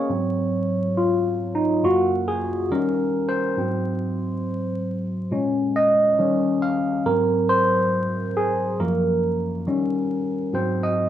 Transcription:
0.00 0.11 A#3 medium
0.00 0.11 C#4 medium
0.00 0.12 G#4 medium
0.00 0.33 C#5 medium
0.00 0.11 D#5 medium
0.00 0.12 F5 medium
0.09 0.70 G#2 soft
0.09 0.70 F#3 soft
0.09 0.71 C4 medium
0.97 1.51 F4 medium
1.55 1.68 D#4 medium
1.83 2.66 F#2 medium
1.83 2.67 A#3 medium
1.83 2.67 F4 soft
1.83 2.29 F#4 medium
2.28 2.72 G#4 medium
2.70 3.53 D#3 medium
2.70 3.53 G3 soft
2.70 3.54 C#4 medium
2.70 3.31 A#4 medium
3.29 4.55 C5 medium
3.57 5.27 G#2 soft
3.57 5.27 F#3 soft
3.57 5.28 C4 medium
5.31 6.14 A#2 medium
5.31 6.14 G#3 soft
5.31 6.15 C#4 medium
5.76 6.58 D#5 medium
6.18 7.01 D#3 medium
6.18 7.01 G3 soft
6.18 7.02 C#4 medium
6.62 7.07 F5 medium
7.05 8.32 G#2 soft
7.05 8.32 F#3 soft
7.05 8.32 C4 medium
7.05 7.50 A#4 medium
7.49 8.38 C5 loud
8.37 8.81 G#4 medium
8.79 9.40 F#2 medium
8.79 9.40 F3 soft
8.79 9.41 A#3 medium
8.79 10.06 A#4 medium
9.67 10.27 D#3 medium
9.67 10.27 G3 soft
9.67 10.27 C#4 medium
10.53 11.09 G#2 medium
10.53 11.09 F#3 soft
10.53 11.09 C4 medium
10.53 10.84 C5 medium
10.83 11.09 D#5 medium

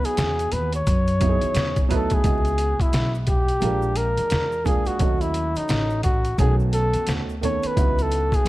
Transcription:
0.00 0.69 F#3 medium
0.00 0.69 B3 medium
0.00 0.69 D#4 medium
0.00 0.70 E4 medium
0.00 0.73 F#4 medium
0.00 muted upright bass stroke soft
0.04 0.54 G#4 loud
0.04 closed hi-hat medium
0.04 maracas soft
0.17 0.50 E2 medium
0.17 snare loud
0.17 closed hi-hat loud
0.17 maracas medium
0.39 closed hi-hat soft
0.39 maracas soft
0.52 0.85 D#2 medium
0.52 0.74 B4 medium
0.52 closed hi-hat medium
0.52 high conga medium
0.52 low conga medium
0.52 maracas soft
0.72 1.87 C#5 medium
0.72 closed hi-hat soft
0.72 maracas soft
0.87 1.40 F#2 loud
0.87 kick medium
0.87 closed hi-hat medium
0.87 maracas medium
1.07 closed hi-hat soft
1.07 maracas soft
1.20 1.82 F#3 medium
1.20 1.82 B3 medium
1.20 1.82 D#4 medium
1.20 1.83 E4 medium
1.20 1.30 F#4 medium
1.20 kick medium
1.20 closed hi-hat medium
1.20 maracas soft
1.29 1.86 G#4 medium
1.41 muted upright bass stroke soft
1.41 closed hi-hat soft
1.41 high conga medium
1.41 maracas soft
1.55 1.88 E2 medium
1.55 snare loud
1.55 closed hi-hat medium
1.55 low conga medium
1.55 maracas medium
1.76 kick loud
1.76 closed hi-hat soft
1.76 maracas soft
1.89 2.23 D2 medium
1.89 2.20 F#3 medium
1.89 2.20 B3 medium
1.89 2.21 D#4 medium
1.89 2.21 E4 medium
1.89 2.21 B4 medium
1.89 closed hi-hat medium
1.89 low conga medium
1.89 maracas medium
1.93 2.15 A4 medium
2.10 2.83 G#4 loud
2.10 kick medium
2.10 closed hi-hat medium
2.10 maracas soft
2.22 2.77 C#2 loud
2.22 3.44 G#3 medium
2.22 3.45 B3 medium
2.22 3.45 E4 medium
2.22 3.45 F#4 medium
2.22 3.45 D#5 medium
2.22 kick loud
2.22 closed hi-hat medium
2.22 maracas medium
2.45 closed hi-hat soft
2.45 maracas soft
2.58 closed hi-hat medium
2.58 maracas soft
2.80 3.15 E4 medium
2.80 muted upright bass stroke soft
2.80 kick loud
2.80 closed hi-hat medium
2.80 maracas soft
2.93 3.59 B1 medium
2.93 snare loud
2.93 closed hi-hat medium
2.93 maracas medium
3.15 maracas soft
3.27 3.98 G4 medium
3.27 kick medium
3.27 closed hi-hat medium
3.27 low conga medium
3.27 maracas soft
3.48 closed hi-hat soft
3.48 maracas soft
3.60 4.15 A#1 loud
3.60 4.53 G#3 medium
3.60 4.53 A#3 medium
3.60 4.53 D4 medium
3.60 4.54 F4 medium
3.60 4.54 A#4 medium
3.60 closed hi-hat medium
3.60 high conga soft
3.60 maracas medium
3.82 maracas soft
3.95 4.67 A#4 loud
3.95 closed hi-hat medium
3.95 maracas soft
4.17 muted upright bass stroke soft
4.17 closed hi-hat soft
4.17 high conga medium
4.17 maracas soft
4.30 4.85 E2 medium
4.30 snare loud
4.30 closed hi-hat medium
4.30 low conga medium
4.30 maracas medium
4.52 maracas soft
4.64 4.96 G#3 medium
4.64 4.96 A#3 medium
4.64 4.96 D4 medium
4.64 4.96 F4 medium
4.64 4.89 G#4 medium
4.64 4.97 G#4 medium
4.64 kick medium
4.64 closed hi-hat medium
4.64 low conga medium
4.64 maracas soft
4.85 5.23 F#4 medium
4.85 muted upright bass stroke soft
4.85 closed hi-hat soft
4.85 maracas soft
4.99 5.53 D#2 loud
4.99 6.20 F#3 medium
4.99 6.21 A3 medium
4.99 6.21 C#4 medium
4.99 6.22 F#4 medium
4.99 6.21 D#5 medium
4.99 kick loud
4.99 closed hi-hat medium
4.99 maracas medium
5.21 5.58 E4 medium
5.21 closed hi-hat soft
5.21 maracas soft
5.34 closed hi-hat medium
5.34 maracas soft
5.55 6.03 D#4 medium
5.55 muted upright bass stroke soft
5.55 closed hi-hat soft
5.55 maracas soft
5.68 6.35 A1 medium
5.68 snare loud
5.68 closed hi-hat medium
5.68 maracas medium
5.90 maracas soft
6.03 6.36 F#4 medium
6.03 kick loud
6.03 closed hi-hat medium
6.03 low conga medium
6.03 maracas soft
6.25 closed hi-hat soft
6.25 maracas soft
6.38 6.91 B1 loud
6.38 7.30 D#3 medium
6.38 7.30 A3 medium
6.38 7.31 B3 medium
6.38 7.31 C#4 medium
6.38 7.31 F#4 medium
6.38 6.55 G#4 loud
6.38 kick medium
6.38 closed hi-hat medium
6.38 high conga soft
6.38 maracas medium
6.60 maracas soft
6.73 7.14 A4 loud
6.73 closed hi-hat medium
6.73 maracas soft
6.94 muted upright bass stroke soft
6.94 closed hi-hat soft
6.94 high conga medium
6.94 maracas soft
7.07 7.60 D2 medium
7.07 snare loud
7.07 closed hi-hat medium
7.07 low conga medium
7.07 maracas medium
7.29 maracas soft
7.41 7.72 D#3 medium
7.41 7.72 A3 medium
7.41 7.73 B3 medium
7.41 7.73 C#4 medium
7.41 7.73 A4 medium
7.41 7.68 C#5 loud
7.41 closed hi-hat medium
7.41 low conga medium
7.41 maracas medium
7.63 8.04 B4 loud
7.63 muted upright bass stroke soft
7.63 closed hi-hat soft
7.63 maracas soft
7.76 8.29 C#2 loud
7.76 8.48 F#3 medium
7.76 8.48 B3 medium
7.76 8.48 D#4 medium
7.76 8.48 E4 medium
7.76 8.48 F#4 medium
7.76 kick loud
7.76 closed hi-hat medium
7.76 maracas medium
7.99 8.36 A4 loud
7.99 closed hi-hat soft
7.99 maracas soft
8.11 closed hi-hat medium
8.11 maracas soft
8.32 8.48 G#4 loud
8.32 muted upright bass stroke soft
8.32 kick loud
8.32 closed hi-hat soft
8.32 maracas soft
8.45 8.48 D#2 medium

